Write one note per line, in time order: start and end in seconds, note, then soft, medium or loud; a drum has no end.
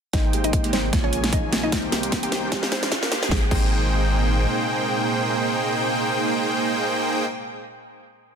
0.13 0.91 G#1 loud
0.13 0.92 C3 medium
0.13 1.71 G#3 medium
0.13 2.50 A#3 medium
0.13 0.89 A#3 medium
0.13 0.36 D#4 medium
0.13 0.89 D#4 medium
0.13 0.89 G#4 medium
0.13 0.89 C5 medium
0.13 0.36 D#5 loud
0.13 0.92 G5 medium
0.13 0.89 G5 medium
0.13 kick medium
0.13 snare soft
0.13 closed hi-hat medium
0.13 riser medium
0.32 0.61 C3 medium
0.32 0.61 G#3 medium
0.32 0.62 A#3 medium
0.32 0.62 G4 medium
0.32 closed hi-hat medium
0.44 0.66 D#4 medium
0.44 0.66 D#5 medium
0.44 closed hi-hat medium
0.53 kick medium
0.53 closed hi-hat medium
0.63 0.70 C3 medium
0.63 0.70 G#3 medium
0.63 0.70 A#3 medium
0.63 0.71 G4 loud
0.63 closed hi-hat medium
0.73 0.95 C4 medium
0.73 0.95 C5 medium
0.73 snare medium
0.73 closed hi-hat medium
0.92 1.71 A#1 medium
0.92 1.04 C#3 medium
0.92 1.72 C#3 medium
0.92 1.04 G#3 medium
0.92 1.69 A#3 medium
0.92 1.05 A#3 medium
0.92 1.72 F4 medium
0.92 1.69 F4 medium
0.92 1.05 F4 loud
0.92 1.69 G#4 medium
0.92 1.69 C#5 medium
0.92 1.69 G#5 medium
0.92 kick medium
0.92 snare medium
0.92 closed hi-hat medium
1.04 1.26 C#4 medium
1.04 1.26 C#5 medium
1.13 closed hi-hat medium
1.23 1.29 C#3 medium
1.23 1.29 G#3 medium
1.23 1.30 A#3 medium
1.23 1.30 F4 medium
1.23 snare medium
1.23 closed hi-hat medium
1.32 1.55 D#4 medium
1.32 1.55 D#5 loud
1.32 kick medium
1.32 closed hi-hat medium
1.51 1.90 D#3 medium
1.51 1.90 A#3 medium
1.51 1.90 C4 medium
1.51 1.91 G4 medium
1.51 snare medium
1.51 closed hi-hat medium
1.63 1.85 D#4 medium
1.63 1.85 D#5 medium
1.72 2.50 C2 loud
1.72 2.51 D#3 medium
1.72 2.48 A#3 medium
1.72 2.51 C4 medium
1.72 2.48 D#4 medium
1.72 3.30 G4 medium
1.72 2.48 G4 medium
1.72 2.48 C5 medium
1.72 2.48 G5 medium
1.72 kick loud
1.72 snare medium
1.72 closed hi-hat medium
1.91 2.20 D#3 medium
1.91 2.20 A#3 medium
1.91 2.21 C4 medium
1.91 2.21 G4 medium
1.91 snare medium
1.91 closed hi-hat medium
2.03 closed hi-hat medium
2.12 kick loud
2.12 snare medium
2.12 closed hi-hat medium
2.22 2.29 D#3 loud
2.22 2.29 A#3 medium
2.22 2.29 C4 medium
2.22 2.37 G4 medium
2.22 2.30 G4 loud
2.22 2.37 G5 medium
2.22 closed hi-hat medium
2.32 snare medium
2.32 closed hi-hat medium
2.51 2.63 F3 medium
2.51 3.30 F3 medium
2.51 2.63 G#3 medium
2.51 3.30 G#3 medium
2.51 3.28 G#3 medium
2.51 3.30 D#4 medium
2.51 3.28 D#4 medium
2.51 2.64 D#4 medium
2.51 3.28 G4 medium
2.51 2.64 G4 loud
2.51 kick loud
2.51 snare medium
2.51 closed hi-hat medium
2.63 snare medium
2.72 2.94 C4 medium
2.72 2.94 C5 loud
2.72 snare loud
2.72 closed hi-hat medium
2.82 2.88 F3 medium
2.82 2.88 G#3 medium
2.82 2.89 D#4 medium
2.82 2.89 G4 medium
2.82 snare medium
2.82 closed hi-hat medium
2.92 kick loud
2.92 snare loud
2.92 closed hi-hat medium
3.02 3.24 A#3 medium
3.02 3.24 A#4 loud
3.02 snare medium
3.10 3.27 C3 medium
3.10 3.29 G#3 medium
3.10 3.31 A#3 medium
3.10 3.50 G4 medium
3.10 snare loud
3.10 closed hi-hat medium
3.23 snare loud
3.28 3.43 G#1 loud
3.28 7.25 A#2 medium
3.28 3.42 C3 medium
3.28 3.43 G#3 medium
3.28 7.25 G#3 medium
3.28 3.43 A#3 medium
3.28 7.25 C4 medium
3.28 3.43 D#4 medium
3.28 3.43 G#4 medium
3.28 3.43 C5 medium
3.28 3.43 G5 loud
3.28 7.25 G5 medium
3.28 kick loud
3.28 snare medium
3.32 3.44 A#3 medium
3.32 3.45 G5 loud
3.48 4.47 G#1 medium
3.48 7.42 C3 medium
3.48 7.44 G#3 medium
3.48 7.25 A#3 medium
3.48 7.25 D#4 medium
3.48 7.45 G#4 medium
3.48 7.25 G#4 medium
3.48 7.25 C5 medium
3.48 7.25 G5 loud
3.48 kick loud
3.48 crash medium
3.52 7.46 A#3 medium
3.52 7.48 G5 medium